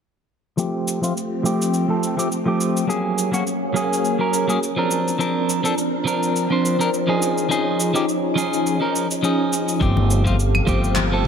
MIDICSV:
0, 0, Header, 1, 5, 480
1, 0, Start_track
1, 0, Tempo, 576923
1, 483, Time_signature, 4, 2, 24, 8
1, 9382, End_track
2, 0, Start_track
2, 0, Title_t, "String machine"
2, 0, Program_c, 0, 50
2, 480, Note_on_c, 0, 53, 74
2, 481, Note_on_c, 0, 67, 79
2, 482, Note_on_c, 0, 57, 69
2, 482, Note_on_c, 0, 60, 70
2, 2383, Note_off_c, 0, 53, 0
2, 2383, Note_off_c, 0, 60, 0
2, 2383, Note_off_c, 0, 67, 0
2, 2384, Note_off_c, 0, 57, 0
2, 2404, Note_on_c, 0, 61, 67
2, 2404, Note_on_c, 0, 68, 78
2, 2405, Note_on_c, 0, 54, 77
2, 2406, Note_on_c, 0, 58, 65
2, 4067, Note_off_c, 0, 61, 0
2, 4067, Note_off_c, 0, 68, 0
2, 4068, Note_off_c, 0, 54, 0
2, 4068, Note_off_c, 0, 58, 0
2, 4084, Note_on_c, 0, 60, 68
2, 4084, Note_on_c, 0, 70, 81
2, 4085, Note_on_c, 0, 62, 66
2, 4086, Note_on_c, 0, 53, 75
2, 5984, Note_off_c, 0, 60, 0
2, 5985, Note_off_c, 0, 62, 0
2, 5985, Note_off_c, 0, 70, 0
2, 6007, Note_on_c, 0, 61, 72
2, 6007, Note_on_c, 0, 63, 64
2, 6009, Note_on_c, 0, 68, 84
2, 8131, Note_off_c, 0, 53, 0
2, 8143, Note_off_c, 0, 61, 0
2, 8144, Note_off_c, 0, 63, 0
2, 8145, Note_off_c, 0, 68, 0
2, 8163, Note_on_c, 0, 69, 69
2, 8164, Note_on_c, 0, 60, 78
2, 8164, Note_on_c, 0, 67, 72
2, 8165, Note_on_c, 0, 77, 88
2, 9382, Note_off_c, 0, 60, 0
2, 9382, Note_off_c, 0, 67, 0
2, 9382, Note_off_c, 0, 69, 0
2, 9382, Note_off_c, 0, 77, 0
2, 9382, End_track
3, 0, Start_track
3, 0, Title_t, "Clean electric guitar"
3, 0, Program_c, 1, 27
3, 476, Note_on_c, 1, 53, 80
3, 482, Note_on_c, 1, 57, 70
3, 488, Note_on_c, 1, 60, 74
3, 494, Note_on_c, 1, 67, 82
3, 820, Note_off_c, 1, 53, 0
3, 823, Note_off_c, 1, 57, 0
3, 826, Note_off_c, 1, 60, 0
3, 829, Note_off_c, 1, 67, 0
3, 844, Note_on_c, 1, 53, 82
3, 851, Note_on_c, 1, 57, 75
3, 857, Note_on_c, 1, 60, 76
3, 864, Note_on_c, 1, 65, 94
3, 928, Note_off_c, 1, 53, 0
3, 932, Note_off_c, 1, 57, 0
3, 934, Note_off_c, 1, 60, 0
3, 938, Note_off_c, 1, 65, 0
3, 1193, Note_on_c, 1, 53, 79
3, 1200, Note_on_c, 1, 57, 70
3, 1207, Note_on_c, 1, 60, 68
3, 1214, Note_on_c, 1, 67, 81
3, 1538, Note_off_c, 1, 53, 0
3, 1542, Note_off_c, 1, 57, 0
3, 1545, Note_off_c, 1, 60, 0
3, 1549, Note_off_c, 1, 67, 0
3, 1565, Note_on_c, 1, 53, 64
3, 1570, Note_on_c, 1, 57, 58
3, 1577, Note_on_c, 1, 60, 62
3, 1584, Note_on_c, 1, 69, 69
3, 1779, Note_off_c, 1, 53, 0
3, 1781, Note_off_c, 1, 57, 0
3, 1785, Note_off_c, 1, 60, 0
3, 1788, Note_off_c, 1, 69, 0
3, 1804, Note_on_c, 1, 53, 77
3, 1808, Note_on_c, 1, 57, 73
3, 1815, Note_on_c, 1, 60, 66
3, 1822, Note_on_c, 1, 67, 84
3, 1888, Note_off_c, 1, 53, 0
3, 1890, Note_off_c, 1, 57, 0
3, 1893, Note_off_c, 1, 60, 0
3, 1897, Note_off_c, 1, 67, 0
3, 2043, Note_on_c, 1, 53, 72
3, 2051, Note_on_c, 1, 57, 62
3, 2057, Note_on_c, 1, 60, 68
3, 2063, Note_on_c, 1, 67, 76
3, 2371, Note_off_c, 1, 53, 0
3, 2375, Note_off_c, 1, 57, 0
3, 2378, Note_off_c, 1, 60, 0
3, 2382, Note_off_c, 1, 67, 0
3, 2390, Note_on_c, 1, 54, 74
3, 2396, Note_on_c, 1, 58, 73
3, 2401, Note_on_c, 1, 61, 71
3, 2409, Note_on_c, 1, 68, 88
3, 2737, Note_off_c, 1, 54, 0
3, 2740, Note_off_c, 1, 58, 0
3, 2743, Note_off_c, 1, 61, 0
3, 2746, Note_off_c, 1, 68, 0
3, 2760, Note_on_c, 1, 54, 78
3, 2767, Note_on_c, 1, 58, 79
3, 2772, Note_on_c, 1, 61, 75
3, 2779, Note_on_c, 1, 66, 92
3, 2846, Note_off_c, 1, 54, 0
3, 2849, Note_off_c, 1, 58, 0
3, 2852, Note_off_c, 1, 61, 0
3, 2855, Note_off_c, 1, 66, 0
3, 3111, Note_on_c, 1, 54, 77
3, 3117, Note_on_c, 1, 58, 77
3, 3124, Note_on_c, 1, 61, 67
3, 3131, Note_on_c, 1, 68, 86
3, 3457, Note_off_c, 1, 54, 0
3, 3460, Note_off_c, 1, 58, 0
3, 3464, Note_off_c, 1, 61, 0
3, 3467, Note_off_c, 1, 68, 0
3, 3484, Note_on_c, 1, 54, 64
3, 3490, Note_on_c, 1, 58, 59
3, 3496, Note_on_c, 1, 61, 62
3, 3502, Note_on_c, 1, 70, 78
3, 3698, Note_off_c, 1, 54, 0
3, 3701, Note_off_c, 1, 58, 0
3, 3704, Note_off_c, 1, 61, 0
3, 3707, Note_off_c, 1, 70, 0
3, 3724, Note_on_c, 1, 54, 81
3, 3731, Note_on_c, 1, 58, 72
3, 3736, Note_on_c, 1, 61, 75
3, 3744, Note_on_c, 1, 68, 83
3, 3808, Note_off_c, 1, 54, 0
3, 3811, Note_off_c, 1, 58, 0
3, 3814, Note_off_c, 1, 61, 0
3, 3817, Note_off_c, 1, 68, 0
3, 3964, Note_on_c, 1, 53, 72
3, 3972, Note_on_c, 1, 60, 68
3, 3977, Note_on_c, 1, 62, 68
3, 3982, Note_on_c, 1, 70, 79
3, 4292, Note_off_c, 1, 53, 0
3, 4296, Note_off_c, 1, 60, 0
3, 4299, Note_off_c, 1, 62, 0
3, 4301, Note_off_c, 1, 70, 0
3, 4315, Note_on_c, 1, 53, 85
3, 4321, Note_on_c, 1, 60, 73
3, 4327, Note_on_c, 1, 62, 78
3, 4333, Note_on_c, 1, 70, 88
3, 4659, Note_off_c, 1, 53, 0
3, 4662, Note_off_c, 1, 60, 0
3, 4665, Note_off_c, 1, 62, 0
3, 4669, Note_off_c, 1, 70, 0
3, 4686, Note_on_c, 1, 53, 83
3, 4692, Note_on_c, 1, 60, 80
3, 4699, Note_on_c, 1, 62, 79
3, 4705, Note_on_c, 1, 69, 100
3, 4769, Note_off_c, 1, 53, 0
3, 4772, Note_off_c, 1, 60, 0
3, 4775, Note_off_c, 1, 62, 0
3, 4778, Note_off_c, 1, 69, 0
3, 5034, Note_on_c, 1, 53, 84
3, 5040, Note_on_c, 1, 60, 75
3, 5047, Note_on_c, 1, 62, 75
3, 5053, Note_on_c, 1, 70, 92
3, 5379, Note_off_c, 1, 53, 0
3, 5382, Note_off_c, 1, 60, 0
3, 5385, Note_off_c, 1, 62, 0
3, 5388, Note_off_c, 1, 70, 0
3, 5409, Note_on_c, 1, 53, 70
3, 5415, Note_on_c, 1, 60, 69
3, 5423, Note_on_c, 1, 62, 69
3, 5428, Note_on_c, 1, 72, 74
3, 5621, Note_off_c, 1, 53, 0
3, 5623, Note_off_c, 1, 60, 0
3, 5627, Note_off_c, 1, 62, 0
3, 5630, Note_off_c, 1, 72, 0
3, 5648, Note_on_c, 1, 53, 81
3, 5653, Note_on_c, 1, 60, 76
3, 5660, Note_on_c, 1, 62, 74
3, 5666, Note_on_c, 1, 70, 94
3, 5730, Note_off_c, 1, 53, 0
3, 5732, Note_off_c, 1, 60, 0
3, 5736, Note_off_c, 1, 62, 0
3, 5739, Note_off_c, 1, 70, 0
3, 5885, Note_on_c, 1, 53, 76
3, 5889, Note_on_c, 1, 61, 63
3, 5896, Note_on_c, 1, 63, 68
3, 5903, Note_on_c, 1, 68, 81
3, 6212, Note_off_c, 1, 53, 0
3, 6214, Note_off_c, 1, 61, 0
3, 6218, Note_off_c, 1, 63, 0
3, 6221, Note_off_c, 1, 68, 0
3, 6232, Note_on_c, 1, 53, 87
3, 6238, Note_on_c, 1, 61, 77
3, 6244, Note_on_c, 1, 63, 81
3, 6251, Note_on_c, 1, 68, 94
3, 6578, Note_off_c, 1, 53, 0
3, 6581, Note_off_c, 1, 61, 0
3, 6584, Note_off_c, 1, 63, 0
3, 6587, Note_off_c, 1, 68, 0
3, 6602, Note_on_c, 1, 53, 94
3, 6608, Note_on_c, 1, 61, 79
3, 6614, Note_on_c, 1, 63, 81
3, 6621, Note_on_c, 1, 67, 103
3, 6687, Note_off_c, 1, 53, 0
3, 6690, Note_off_c, 1, 61, 0
3, 6693, Note_off_c, 1, 63, 0
3, 6696, Note_off_c, 1, 67, 0
3, 6952, Note_on_c, 1, 53, 89
3, 6958, Note_on_c, 1, 61, 76
3, 6962, Note_on_c, 1, 63, 73
3, 6971, Note_on_c, 1, 68, 95
3, 7298, Note_off_c, 1, 53, 0
3, 7301, Note_off_c, 1, 61, 0
3, 7303, Note_off_c, 1, 63, 0
3, 7307, Note_off_c, 1, 68, 0
3, 7322, Note_on_c, 1, 53, 69
3, 7327, Note_on_c, 1, 61, 68
3, 7333, Note_on_c, 1, 63, 69
3, 7339, Note_on_c, 1, 70, 76
3, 7537, Note_off_c, 1, 53, 0
3, 7539, Note_off_c, 1, 61, 0
3, 7543, Note_off_c, 1, 63, 0
3, 7545, Note_off_c, 1, 70, 0
3, 7676, Note_on_c, 1, 53, 66
3, 7683, Note_on_c, 1, 61, 61
3, 7689, Note_on_c, 1, 63, 56
3, 7694, Note_on_c, 1, 68, 67
3, 8134, Note_off_c, 1, 53, 0
3, 8137, Note_off_c, 1, 61, 0
3, 8140, Note_off_c, 1, 63, 0
3, 8143, Note_off_c, 1, 68, 0
3, 8155, Note_on_c, 1, 53, 81
3, 8162, Note_on_c, 1, 57, 73
3, 8167, Note_on_c, 1, 60, 76
3, 8174, Note_on_c, 1, 67, 90
3, 8499, Note_off_c, 1, 53, 0
3, 8503, Note_off_c, 1, 57, 0
3, 8505, Note_off_c, 1, 60, 0
3, 8509, Note_off_c, 1, 67, 0
3, 8523, Note_on_c, 1, 53, 90
3, 8529, Note_on_c, 1, 57, 80
3, 8536, Note_on_c, 1, 60, 78
3, 8544, Note_on_c, 1, 65, 99
3, 8607, Note_off_c, 1, 53, 0
3, 8611, Note_off_c, 1, 57, 0
3, 8614, Note_off_c, 1, 60, 0
3, 8618, Note_off_c, 1, 65, 0
3, 8875, Note_on_c, 1, 53, 82
3, 8880, Note_on_c, 1, 57, 72
3, 8888, Note_on_c, 1, 60, 76
3, 8893, Note_on_c, 1, 67, 91
3, 9219, Note_off_c, 1, 53, 0
3, 9222, Note_off_c, 1, 57, 0
3, 9226, Note_off_c, 1, 60, 0
3, 9228, Note_off_c, 1, 67, 0
3, 9247, Note_on_c, 1, 53, 68
3, 9252, Note_on_c, 1, 57, 65
3, 9259, Note_on_c, 1, 60, 64
3, 9265, Note_on_c, 1, 69, 80
3, 9382, Note_off_c, 1, 53, 0
3, 9382, Note_off_c, 1, 57, 0
3, 9382, Note_off_c, 1, 60, 0
3, 9382, Note_off_c, 1, 69, 0
3, 9382, End_track
4, 0, Start_track
4, 0, Title_t, "Upright bass"
4, 0, Program_c, 2, 32
4, 8162, Note_on_c, 2, 31, 93
4, 8840, Note_off_c, 2, 31, 0
4, 8882, Note_on_c, 2, 31, 77
4, 9382, Note_off_c, 2, 31, 0
4, 9382, End_track
5, 0, Start_track
5, 0, Title_t, "Drums"
5, 485, Note_on_c, 9, 69, 41
5, 568, Note_off_c, 9, 69, 0
5, 731, Note_on_c, 9, 69, 79
5, 814, Note_off_c, 9, 69, 0
5, 861, Note_on_c, 9, 69, 51
5, 944, Note_off_c, 9, 69, 0
5, 975, Note_on_c, 9, 69, 39
5, 1058, Note_off_c, 9, 69, 0
5, 1212, Note_on_c, 9, 69, 67
5, 1296, Note_off_c, 9, 69, 0
5, 1345, Note_on_c, 9, 69, 49
5, 1428, Note_off_c, 9, 69, 0
5, 1446, Note_on_c, 9, 69, 43
5, 1529, Note_off_c, 9, 69, 0
5, 1692, Note_on_c, 9, 69, 64
5, 1775, Note_off_c, 9, 69, 0
5, 1824, Note_on_c, 9, 69, 56
5, 1907, Note_off_c, 9, 69, 0
5, 1929, Note_on_c, 9, 69, 43
5, 2012, Note_off_c, 9, 69, 0
5, 2169, Note_on_c, 9, 69, 72
5, 2252, Note_off_c, 9, 69, 0
5, 2304, Note_on_c, 9, 69, 52
5, 2387, Note_off_c, 9, 69, 0
5, 2414, Note_on_c, 9, 69, 41
5, 2498, Note_off_c, 9, 69, 0
5, 2648, Note_on_c, 9, 69, 78
5, 2731, Note_off_c, 9, 69, 0
5, 2777, Note_on_c, 9, 69, 55
5, 2860, Note_off_c, 9, 69, 0
5, 2887, Note_on_c, 9, 69, 46
5, 2970, Note_off_c, 9, 69, 0
5, 3131, Note_on_c, 9, 69, 76
5, 3214, Note_off_c, 9, 69, 0
5, 3270, Note_on_c, 9, 69, 53
5, 3353, Note_off_c, 9, 69, 0
5, 3368, Note_on_c, 9, 69, 44
5, 3451, Note_off_c, 9, 69, 0
5, 3608, Note_on_c, 9, 69, 81
5, 3691, Note_off_c, 9, 69, 0
5, 3740, Note_on_c, 9, 69, 58
5, 3823, Note_off_c, 9, 69, 0
5, 3854, Note_on_c, 9, 69, 46
5, 3937, Note_off_c, 9, 69, 0
5, 4084, Note_on_c, 9, 69, 83
5, 4167, Note_off_c, 9, 69, 0
5, 4226, Note_on_c, 9, 69, 53
5, 4309, Note_off_c, 9, 69, 0
5, 4333, Note_on_c, 9, 69, 44
5, 4416, Note_off_c, 9, 69, 0
5, 4571, Note_on_c, 9, 69, 78
5, 4654, Note_off_c, 9, 69, 0
5, 4702, Note_on_c, 9, 69, 61
5, 4785, Note_off_c, 9, 69, 0
5, 4809, Note_on_c, 9, 69, 45
5, 4892, Note_off_c, 9, 69, 0
5, 5054, Note_on_c, 9, 69, 79
5, 5137, Note_off_c, 9, 69, 0
5, 5183, Note_on_c, 9, 69, 53
5, 5266, Note_off_c, 9, 69, 0
5, 5291, Note_on_c, 9, 69, 44
5, 5374, Note_off_c, 9, 69, 0
5, 5536, Note_on_c, 9, 69, 85
5, 5619, Note_off_c, 9, 69, 0
5, 5665, Note_on_c, 9, 69, 56
5, 5748, Note_off_c, 9, 69, 0
5, 5772, Note_on_c, 9, 69, 45
5, 5855, Note_off_c, 9, 69, 0
5, 6009, Note_on_c, 9, 69, 88
5, 6092, Note_off_c, 9, 69, 0
5, 6138, Note_on_c, 9, 69, 55
5, 6222, Note_off_c, 9, 69, 0
5, 6252, Note_on_c, 9, 69, 40
5, 6336, Note_off_c, 9, 69, 0
5, 6489, Note_on_c, 9, 69, 86
5, 6572, Note_off_c, 9, 69, 0
5, 6617, Note_on_c, 9, 69, 54
5, 6701, Note_off_c, 9, 69, 0
5, 6729, Note_on_c, 9, 69, 46
5, 6813, Note_off_c, 9, 69, 0
5, 6970, Note_on_c, 9, 69, 88
5, 7053, Note_off_c, 9, 69, 0
5, 7100, Note_on_c, 9, 69, 47
5, 7183, Note_off_c, 9, 69, 0
5, 7210, Note_on_c, 9, 69, 47
5, 7293, Note_off_c, 9, 69, 0
5, 7452, Note_on_c, 9, 69, 79
5, 7535, Note_off_c, 9, 69, 0
5, 7578, Note_on_c, 9, 69, 59
5, 7661, Note_off_c, 9, 69, 0
5, 7687, Note_on_c, 9, 69, 45
5, 7770, Note_off_c, 9, 69, 0
5, 7927, Note_on_c, 9, 69, 74
5, 8010, Note_off_c, 9, 69, 0
5, 8058, Note_on_c, 9, 69, 57
5, 8141, Note_off_c, 9, 69, 0
5, 8162, Note_on_c, 9, 36, 115
5, 8170, Note_on_c, 9, 69, 38
5, 8245, Note_off_c, 9, 36, 0
5, 8253, Note_off_c, 9, 69, 0
5, 8293, Note_on_c, 9, 63, 77
5, 8376, Note_off_c, 9, 63, 0
5, 8408, Note_on_c, 9, 69, 79
5, 8491, Note_off_c, 9, 69, 0
5, 8534, Note_on_c, 9, 36, 58
5, 8540, Note_on_c, 9, 69, 53
5, 8617, Note_off_c, 9, 36, 0
5, 8623, Note_off_c, 9, 69, 0
5, 8649, Note_on_c, 9, 69, 47
5, 8732, Note_off_c, 9, 69, 0
5, 8776, Note_on_c, 9, 75, 73
5, 8781, Note_on_c, 9, 63, 58
5, 8859, Note_off_c, 9, 75, 0
5, 8864, Note_off_c, 9, 63, 0
5, 8882, Note_on_c, 9, 36, 99
5, 8882, Note_on_c, 9, 69, 74
5, 8965, Note_off_c, 9, 36, 0
5, 8965, Note_off_c, 9, 69, 0
5, 9018, Note_on_c, 9, 69, 51
5, 9101, Note_off_c, 9, 69, 0
5, 9113, Note_on_c, 9, 39, 81
5, 9124, Note_on_c, 9, 63, 79
5, 9127, Note_on_c, 9, 69, 49
5, 9197, Note_off_c, 9, 39, 0
5, 9207, Note_off_c, 9, 63, 0
5, 9210, Note_off_c, 9, 69, 0
5, 9382, End_track
0, 0, End_of_file